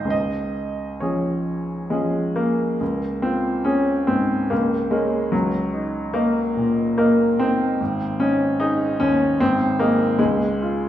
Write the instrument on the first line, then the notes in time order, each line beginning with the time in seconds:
grand piano
Already playing: G#1 F#3 D#4 G#4 C5 D#5
0.05 C#2
0.10 D#5
1.00 F3 C#4 G#4 C#5
1.90 F3 G#3 C#4 G#4
2.36 A#3
2.80 C#2
3.22 C4 F4
3.64 C#4 G#4 C#5
4.07 G#2 C4
4.50 C#2 A#3
4.91 G#3 A#4 C#5
5.32 C#2 F#3
5.73 D#4
6.14 A#3 A#4 D#5
6.56 A#2
6.98 A#3 A#4 D#5
7.39 C4 D#4
7.81 G#1
8.20 C#4 D#4
8.60 D#4 G#4 D#5
9.00 D#2 C#4
9.40 G#1 C4
9.79 A#3 G#4 D#5
10.18 C#2 G#3
10.62 F4